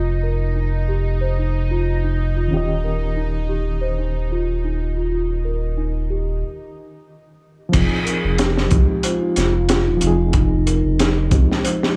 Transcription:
Already playing: F1 F3 G#3 C4 D#4 F4 G4 C5 D#5
0.23 A#4
0.56 D#4
0.88 G4
1.21 C5
1.39 D#4
1.71 F4
2.04 D#4
2.36 F4
2.48 D#3 C#4 F4
2.52 D#1 G4
2.57 D#5
2.84 A#4
3.16 D#4
3.49 G4
3.81 C5
3.99 D#4
4.32 F4
4.64 D#4
4.97 F4
5.12 F4
5.45 A#4
5.77 D#4
6.10 G4
7.69 F3 C4
7.73 F1 D#4 F4 G#4, kick, closed hi-hat, crash
7.78 G#4
8.05 G#4 A#4, closed hi-hat
8.24 F1
8.38 D#4 G4, snare, closed hi-hat
8.58 snare
8.66 F3 C4
8.71 C2 D#4 G4, kick, closed hi-hat
8.76 G#3
9.03 F4 C5, closed hi-hat
9.21 D#4
9.36 F1, snare, closed hi-hat
9.54 F4
9.69 snare, closed hi-hat
9.86 D#1 D#4
9.97 F3 C4
10.01 F1 D#4 F4, closed hi-hat
10.07 G#4
10.19 F4
10.33 D#4 F4, kick, closed hi-hat
10.66 A#4, closed hi-hat
10.85 F1
10.99 D#4, snare, closed hi-hat
11.31 C2 F3 C4 D#4 G4, kick, closed hi-hat
11.35 G#3
11.52 snare
11.64 D#4 C5, closed hi-hat
11.81 D#4, snare

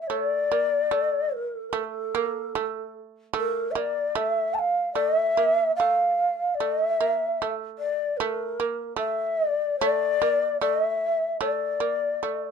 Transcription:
0.01 E5
0.07 A3 C#5
0.22 D5
0.51 A#3
0.91 A3
1.36 A#4
1.56 A4
1.69 A3 A#4
1.79 A#4
1.84 A4
2.15 A#3
2.55 A3
3.33 A3 A#4
3.71 E5
3.75 A#3 D5
4.15 A3 E5
4.54 A5
4.59 F5
4.93 A3 D5
5.16 E5
5.37 A#3
5.76 A3 F5
6.54 D5
6.60 A3
6.72 D#5
6.83 E5
7.00 A#3
7.42 A3
7.78 D5
8.17 A3 A#4
8.60 A#3
8.96 A3 E5
9.48 D5
9.79 A3 D5
10.22 A#3
10.60 A3 D5
10.83 E5
11.40 A3 D5
11.80 A#3
12.23 A3

